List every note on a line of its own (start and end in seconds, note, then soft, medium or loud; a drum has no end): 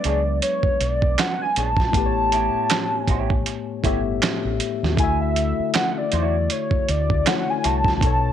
0.00 1.89 F#3 medium
0.00 1.91 G#3 soft
0.00 1.88 B3 medium
0.00 1.90 D4 soft
0.00 1.92 B4 medium
0.00 0.39 D5 medium
0.00 1.95 E5 soft
0.04 0.39 C#2 medium
0.04 0.19 D4 medium
0.04 0.20 G#4 medium
0.04 0.20 C#5 medium
0.04 closed hi-hat medium
0.42 0.82 C#5 medium
0.42 closed hi-hat medium
0.63 kick medium
0.81 1.14 B1 medium
0.81 1.21 D5 medium
0.81 closed hi-hat medium
1.02 kick medium
1.19 1.41 F#5 medium
1.19 snare medium
1.19 clap medium
1.19 closed hi-hat medium
1.42 1.56 G#5 medium
1.56 1.91 A#1 medium
1.56 1.68 D4 medium
1.56 1.68 G#4 medium
1.56 1.69 C#5 medium
1.56 2.99 A5 loud
1.56 closed hi-hat medium
1.77 kick medium
1.77 snare soft
1.90 2.48 A1 medium
1.90 3.78 A2 medium
1.90 3.79 A3 soft
1.90 kick medium
1.94 3.80 B3 medium
1.94 3.81 G4 medium
1.94 closed hi-hat medium
1.99 2.04 B4 soft
2.06 3.86 C#5 medium
2.32 2.68 E4 medium
2.32 2.68 G4 medium
2.32 2.68 C#5 medium
2.32 closed hi-hat medium
2.55 muted fingered electric bass stroke soft
2.70 snare medium
2.70 clap medium
2.70 closed hi-hat medium
2.99 3.81 G#5 loud
3.08 3.42 A1 medium
3.08 3.31 E4 medium
3.08 3.32 G4 medium
3.08 3.32 C#5 medium
3.08 kick medium
3.08 closed hi-hat medium
3.30 kick medium
3.46 muted clean electric guitar stroke soft
3.46 closed hi-hat medium
3.82 4.18 G1 medium
3.82 4.97 A2 medium
3.82 4.95 A3 medium
3.82 4.98 B3 soft
3.82 3.99 E4 medium
3.82 3.99 G4 medium
3.82 4.99 G4 medium
3.82 3.99 C#5 medium
3.82 kick medium
3.82 closed hi-hat medium
3.87 4.99 E5 medium
4.22 snare loud
4.22 clap medium
4.22 closed hi-hat medium
4.45 4.59 A1 medium
4.60 closed hi-hat medium
4.83 4.98 D#2 medium
4.83 snare soft
4.94 5.52 D2 medium
4.94 7.20 D3 medium
4.94 7.21 A3 medium
4.94 kick medium
4.98 7.22 E4 medium
4.98 7.23 F#4 medium
4.98 5.19 G#5 medium
4.98 closed hi-hat medium
5.04 7.24 E5 medium
5.21 5.71 E5 medium
5.36 closed hi-hat medium
5.59 muted fingered electric bass stroke soft
5.74 5.99 F#5 medium
5.74 muted clean electric guitar stroke soft
5.74 snare medium
5.74 clap medium
5.74 closed hi-hat medium
5.98 6.54 D5 medium
6.12 6.46 E2 medium
6.12 6.35 E4 medium
6.12 6.35 F#4 medium
6.12 6.35 C#5 medium
6.12 closed hi-hat medium
6.50 6.92 C#5 medium
6.50 closed hi-hat medium
6.71 kick medium
6.89 7.22 D2 medium
6.89 7.29 D5 medium
6.89 closed hi-hat medium
7.10 kick medium
7.24 8.01 D3 soft
7.24 8.01 A3 soft
7.24 8.02 E4 soft
7.24 8.03 F#4 soft
7.24 7.52 F#5 medium
7.24 snare loud
7.24 clap medium
7.24 closed hi-hat medium
7.29 8.03 C#5 medium
7.50 7.67 G#5 loud
7.64 7.98 C2 medium
7.64 7.75 E4 medium
7.64 7.75 F#4 medium
7.64 7.76 C#5 medium
7.64 8.32 A5 loud
7.64 closed hi-hat medium
7.84 kick medium
7.84 snare soft
7.97 8.32 B2 medium
7.97 8.32 B3 medium
7.97 kick medium
8.02 8.32 B1 medium
8.02 8.32 D#4 medium
8.02 8.32 A4 soft
8.02 closed hi-hat medium
8.07 8.32 C#5 medium